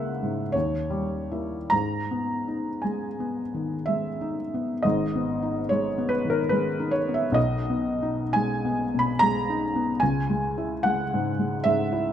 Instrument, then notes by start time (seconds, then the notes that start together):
felt piano
Already playing: C#2 G#3 A#3 E4 E5 F#5
0.23 G#2
0.52 D#2 C#5
0.90 G3
1.31 A#3 E4
1.70 G#2 A#5
2.11 B3
2.48 D#4
2.82 G#3 G#5
3.20 B3
3.54 D#3
3.86 G#3 E5
4.21 D#4
4.54 B3
4.83 G#1 G#2 D#5
5.15 B3
5.43 D#4
5.69 G#3 C#5
5.98 B3
6.09 B4
6.25 D#3
6.30 A#4
6.49 G#3 B4
6.79 D#4
6.91 C#5
7.08 B3
7.14 E5
7.32 B1 D#5
7.70 B3
8.02 D#4
8.33 G#3 G#5
8.65 B3
8.94 B2
8.99 B5
9.19 G#3 A#5
9.50 D#4
9.76 B3
10.00 C#2 G#5
10.30 G#3
10.58 E4
10.83 G#3 F#5
11.14 G#2
11.39 G#3
11.64 G#2 E5
11.92 E4